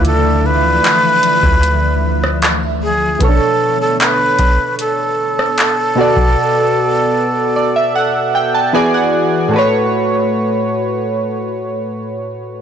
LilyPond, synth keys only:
\new Staff \with { instrumentName = "Synth keys" } { \time 4/4 \key a \major \tempo 4 = 76 << { r1 | r1 | r4. d''16 e''16 fis''8 g''16 a''16 gis''16 fis''8. | r1 | } \\ { <d a e' f' d''>2.~ <d a e' f' d''>8 r8 | <b, b cis' d' a' cis''>2.~ <b, b cis' d' a' cis''>8 <b, b fis' a' d''>8~ | <b, b fis' a' d''>2. <e b fis' gis' d''>4 | <a, a fis' b' cis''>1 | } >> }